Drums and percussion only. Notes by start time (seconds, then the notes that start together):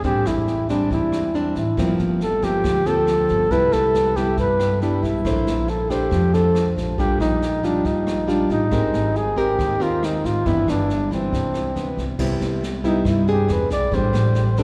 0.03 kick, snare
0.25 cross-stick, snare
0.47 snare
0.69 kick, snare
0.91 kick, snare
1.12 cross-stick, snare
1.35 snare
1.56 kick, snare
1.77 kick, cross-stick, snare
1.99 snare
2.21 snare
2.42 kick, snare
2.64 kick, cross-stick, snare
2.85 snare
3.07 cross-stick, snare
3.29 kick, snare
3.51 kick, snare
3.72 cross-stick, snare
3.94 snare
4.16 kick, snare
4.37 kick, snare
4.59 cross-stick, snare
4.82 snare
5.03 kick, snare
5.25 kick, cross-stick, snare
5.47 snare
5.68 snare
5.90 kick, snare
6.11 kick, cross-stick, snare
6.33 snare
6.55 cross-stick, snare
6.77 kick, snare
6.98 kick, snare
7.20 cross-stick, snare
7.42 snare
7.63 kick, snare
7.85 kick, snare
8.07 cross-stick, snare
8.28 snare
8.50 kick, snare
8.71 kick, cross-stick, snare
8.94 snare
9.15 snare
9.37 kick, snare
9.59 kick, cross-stick, snare
9.81 snare
10.03 cross-stick, snare
10.24 kick, snare
10.46 kick, snare
10.68 cross-stick, snare
10.90 snare
11.11 kick, snare
11.33 kick, snare
11.54 cross-stick, snare
11.76 snare
11.97 kick, snare
12.19 kick, cross-stick, snare, crash
12.41 snare
12.63 snare
12.84 kick, snare
13.05 kick, cross-stick, snare
13.27 snare
13.48 cross-stick, snare
13.70 kick, snare
13.92 kick, snare
14.14 cross-stick, snare
14.35 snare
14.57 kick, snare